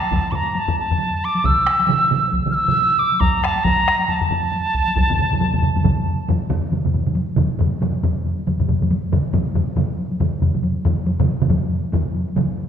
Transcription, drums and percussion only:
0.02 taiko high medium
0.11 taiko medium
0.11 taiko low-mid medium
0.11 taiko high medium
0.33 taiko low-mid medium
0.46 taiko high soft
0.55 taiko high medium
0.68 taiko low-mid loud
0.90 taiko low-mid medium
0.90 taiko high soft
0.99 taiko high medium
1.35 taiko high soft
1.44 taiko medium
1.44 taiko mid medium
1.44 taiko high medium
1.66 taiko rim medium
1.79 taiko high medium
1.88 taiko mid loud
1.88 taiko high medium
2.11 taiko mid medium
2.23 taiko high soft
2.32 taiko medium
2.32 taiko high medium
2.46 taiko mid medium
2.68 taiko mid loud
2.68 taiko high soft
2.77 taiko high medium
3.12 taiko high soft
3.21 taiko medium
3.21 taiko low-mid medium
3.21 taiko high medium
3.44 taiko rim medium
3.56 taiko high medium
3.65 taiko medium
3.65 taiko low-mid medium
3.65 taiko high medium
3.88 taiko rim medium
4.00 taiko high soft
4.08 taiko low-mid medium
4.08 taiko high medium
4.21 taiko low-mid medium
4.30 taiko low-mid medium
4.43 taiko high medium
4.52 taiko high medium
4.74 taiko medium
4.87 taiko high soft
4.96 taiko loud
4.96 taiko low-mid medium
4.96 taiko mid medium
4.96 taiko high medium
5.10 taiko low-mid medium
5.10 taiko mid medium
5.19 taiko low-mid medium
5.19 taiko mid medium
5.32 taiko low-mid medium
5.32 taiko mid medium
5.32 taiko high medium
5.40 taiko low-mid medium
5.40 taiko mid medium
5.40 taiko high medium
5.54 taiko low-mid medium
5.54 taiko mid medium
5.62 taiko low-mid medium
5.62 taiko mid medium
5.76 taiko low-mid medium
5.76 taiko mid medium
5.76 taiko high medium
5.84 taiko medium
5.84 taiko low-mid loud
5.84 taiko mid medium
5.84 taiko high medium
6.06 taiko high medium
6.29 taiko low-mid medium
6.29 taiko mid medium
6.29 taiko high medium
6.50 taiko low-mid medium
6.50 taiko mid loud
6.64 taiko high medium
6.72 taiko low-mid medium
6.72 taiko mid medium
6.72 taiko high medium
6.85 taiko low-mid medium
6.85 taiko mid medium
6.94 taiko low-mid medium
6.94 taiko mid medium
6.94 taiko high soft
7.07 taiko low-mid medium
7.07 taiko mid medium
7.07 taiko high soft
7.15 taiko high medium
7.36 taiko low-mid medium
7.36 taiko mid medium
7.36 taiko high soft
7.59 taiko low-mid medium
7.59 taiko mid medium
7.59 taiko high medium
7.81 taiko low-mid medium
7.81 taiko mid medium
7.81 taiko high medium
7.94 taiko high medium
8.03 taiko low-mid medium
8.03 taiko mid medium
8.03 taiko high medium
8.26 taiko high soft
8.39 taiko high medium
8.47 taiko low-mid medium
8.47 taiko mid medium
8.47 taiko high medium
8.60 taiko low-mid medium
8.60 taiko mid medium
8.69 taiko low-mid medium
8.69 taiko mid medium
8.69 taiko high medium
8.82 taiko low-mid medium
8.82 taiko mid medium
8.82 taiko high medium
8.91 taiko high medium
9.12 taiko low-mid medium
9.12 taiko mid medium
9.12 taiko high medium
9.33 taiko low-mid medium
9.33 taiko mid medium
9.33 taiko high medium
9.55 taiko low-mid medium
9.55 taiko mid medium
9.55 taiko high medium
9.68 taiko high medium
9.76 taiko low-mid medium
9.76 taiko mid medium
9.76 taiko high medium
9.98 taiko high soft
10.11 taiko high medium
10.20 taiko low-mid medium
10.20 taiko mid medium
10.20 taiko high medium
10.42 taiko low-mid medium
10.42 taiko mid medium
10.42 taiko high soft
10.54 taiko low-mid medium
10.54 taiko mid medium
10.54 taiko high medium
10.63 taiko high medium
10.85 taiko low-mid loud
10.85 taiko mid medium
10.85 taiko high medium
11.06 taiko high medium
11.20 taiko low-mid loud
11.20 taiko mid medium
11.28 taiko high medium
11.41 taiko low-mid medium
11.41 taiko mid medium
11.41 taiko high soft
11.50 taiko low-mid medium
11.50 taiko mid medium
11.50 taiko high medium
11.71 taiko high soft
11.84 taiko high soft
11.92 taiko low-mid medium
11.92 taiko mid medium
11.92 taiko high medium
12.14 taiko high medium
12.28 taiko high medium
12.36 taiko low-mid medium
12.36 taiko mid loud
12.36 taiko high medium
12.58 taiko high soft

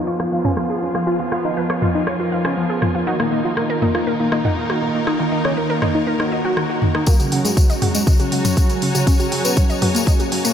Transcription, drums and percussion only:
0.20 cross-stick soft
0.45 mid tom medium
0.57 cross-stick soft
0.95 cross-stick soft
1.32 cross-stick soft
1.70 cross-stick soft
1.82 mid tom medium
2.07 cross-stick soft
2.45 cross-stick soft
2.82 cross-stick soft
2.82 mid tom medium
3.20 cross-stick soft
3.57 cross-stick soft
3.82 mid tom medium
3.95 cross-stick soft
4.32 cross-stick soft
4.45 mid tom medium
4.70 cross-stick soft
5.07 cross-stick soft
5.45 cross-stick soft
5.82 cross-stick soft
5.82 mid tom medium
6.20 cross-stick soft
6.57 cross-stick soft
6.82 mid tom medium
6.95 cross-stick soft
7.06 kick loud
7.06 closed hi-hat soft
7.06 tambourine medium
7.20 closed hi-hat soft
7.20 tambourine soft
7.32 open hi-hat loud
7.45 closed hi-hat soft
7.45 tambourine medium
7.57 kick loud
7.57 closed hi-hat soft
7.57 tambourine medium
7.70 closed hi-hat soft
7.70 tambourine soft
7.82 mid tom medium
7.82 open hi-hat medium
7.95 closed hi-hat soft
7.95 tambourine medium
8.07 kick loud
8.07 closed hi-hat soft
8.07 tambourine medium
8.20 closed hi-hat soft
8.20 tambourine soft
8.32 open hi-hat loud
8.45 closed hi-hat soft
8.45 mid tom medium
8.45 tambourine medium
8.57 kick loud
8.57 closed hi-hat soft
8.57 tambourine medium
8.69 closed hi-hat soft
8.69 tambourine soft
8.82 open hi-hat medium
8.95 closed hi-hat soft
8.95 tambourine medium
9.07 kick loud
9.07 closed hi-hat soft
9.07 tambourine medium
9.20 closed hi-hat soft
9.20 tambourine soft
9.32 open hi-hat loud
9.45 closed hi-hat soft
9.45 tambourine medium
9.57 kick loud
9.57 closed hi-hat soft
9.57 tambourine medium
9.70 closed hi-hat soft
9.70 tambourine soft
9.82 mid tom medium
9.82 open hi-hat medium
9.95 closed hi-hat soft
9.95 tambourine medium
10.07 kick loud
10.07 closed hi-hat soft
10.07 tambourine medium
10.20 closed hi-hat soft
10.20 tambourine soft
10.32 open hi-hat loud
10.45 closed hi-hat soft
10.45 tambourine medium

